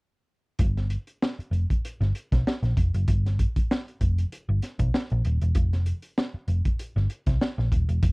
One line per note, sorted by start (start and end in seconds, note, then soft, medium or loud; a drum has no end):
0.59 0.95 G1 medium
0.59 kick loud
0.59 closed hi-hat medium
0.77 snare soft
0.77 closed hi-hat soft
0.90 closed hi-hat medium
1.07 closed hi-hat soft
1.22 snare loud
1.39 muted picked electric bass stroke soft
1.39 closed hi-hat soft
1.51 1.65 F1 medium
1.51 closed hi-hat medium
1.70 kick medium
1.70 closed hi-hat soft
1.85 closed hi-hat medium
2.00 2.11 G1 medium
2.00 snare soft
2.00 closed hi-hat soft
2.15 closed hi-hat medium
2.32 2.42 B1 medium
2.32 kick medium
2.32 snare soft
2.32 closed hi-hat soft
2.47 snare loud
2.63 2.73 A#1 medium
2.63 snare soft
2.63 closed hi-hat soft
2.77 2.90 F1 medium
2.77 kick medium
2.77 closed hi-hat medium
2.94 3.04 F#1 medium
2.94 closed hi-hat soft
3.08 3.44 G1 medium
3.08 kick loud
3.08 closed hi-hat medium
3.26 snare soft
3.26 closed hi-hat soft
3.39 kick medium
3.39 closed hi-hat medium
3.56 kick medium
3.56 closed hi-hat medium
3.71 snare loud
3.88 closed hi-hat soft
4.01 4.24 F1 medium
4.01 kick medium
4.01 closed hi-hat medium
4.18 closed hi-hat medium
4.32 closed hi-hat medium
4.49 4.59 G1 medium
4.62 snare soft
4.62 closed hi-hat medium
4.79 4.89 B1 medium
4.79 kick medium
4.79 closed hi-hat medium
4.94 snare medium
5.10 5.21 A#1 medium
5.10 closed hi-hat soft
5.25 5.38 D#1 medium
5.25 closed hi-hat medium
5.41 5.52 E1 medium
5.41 closed hi-hat medium
5.55 5.91 F1 medium
5.55 kick loud
5.55 closed hi-hat medium
5.73 snare soft
5.73 closed hi-hat soft
5.86 closed hi-hat medium
6.02 closed hi-hat soft
6.18 snare loud
6.34 muted picked electric bass stroke soft
6.48 6.61 F1 medium
6.48 closed hi-hat medium
6.65 kick medium
6.65 closed hi-hat soft
6.79 closed hi-hat medium
6.96 7.06 G1 medium
6.96 snare soft
7.10 closed hi-hat medium
7.26 7.37 C2 medium
7.26 kick medium
7.26 snare soft
7.26 closed hi-hat medium
7.41 snare loud
7.58 7.68 A#1 medium
7.58 snare soft
7.72 7.85 D#1 medium
7.72 kick medium
7.72 closed hi-hat medium
7.88 7.99 E1 medium
7.88 closed hi-hat medium
8.03 8.12 F1 loud
8.03 kick loud
8.03 closed hi-hat medium